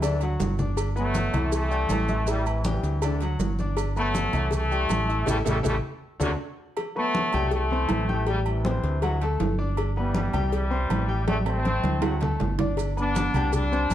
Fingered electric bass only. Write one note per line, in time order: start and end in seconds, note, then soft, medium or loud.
0.00 0.36 D2 medium
0.40 1.28 G1 medium
1.34 1.86 C2 medium
1.90 2.78 A1 medium
2.83 3.36 D2 medium
3.39 4.27 G1 medium
4.33 4.86 C2 medium
4.90 5.25 A1 medium
5.27 5.41 A1 loud
5.46 5.60 A1 loud
5.65 5.79 A1 loud
6.20 6.35 D2 medium
7.34 7.86 C2 medium
7.90 8.78 A1 medium
8.83 9.36 D2 loud
9.40 10.28 G1 medium
10.34 10.86 C2 medium
10.90 11.78 A1 medium
11.84 12.36 D2 medium
12.40 13.28 G1 loud
13.34 13.86 C2 medium
13.90 13.94 A1 medium